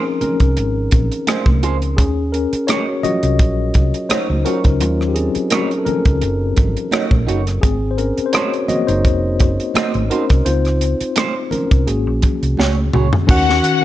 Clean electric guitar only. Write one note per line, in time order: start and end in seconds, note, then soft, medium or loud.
1.27 1.44 F4 medium
1.27 1.44 G#4 medium
1.27 1.44 C5 medium
1.63 1.76 F4 soft
1.63 1.76 G#4 medium
1.63 1.76 C5 medium
2.68 2.85 D#4 medium
2.68 2.86 F#4 medium
2.68 2.86 C#5 medium
4.10 4.27 D#4 medium
4.10 4.27 F#4 medium
4.10 4.27 C#5 medium
4.45 4.58 D#4 soft
4.45 4.59 F#4 soft
4.45 4.59 C#5 medium
5.51 5.68 D#4 medium
5.51 5.68 F#4 medium
5.51 5.68 C#5 medium
6.92 7.09 D#4 medium
6.92 7.09 F#4 medium
6.92 7.10 C#5 medium
7.27 7.40 D#4 medium
7.27 7.41 F#4 medium
7.27 7.41 C#5 medium
8.33 8.50 D#4 medium
8.33 8.51 F#4 medium
8.33 8.51 C5 medium
9.75 9.92 D#4 medium
9.75 9.92 F#4 medium
9.75 9.92 C5 medium
10.11 10.24 D#4 soft
10.11 10.24 F#4 medium
10.11 10.24 C5 medium
11.17 11.33 C#4 medium
11.17 11.34 F4 medium
11.17 11.34 C5 medium
12.59 12.75 F#4 medium
12.59 12.75 G#4 medium
12.59 12.75 C#5 medium
12.94 13.07 F#4 soft
12.94 13.07 G#4 soft
12.94 13.07 C#5 soft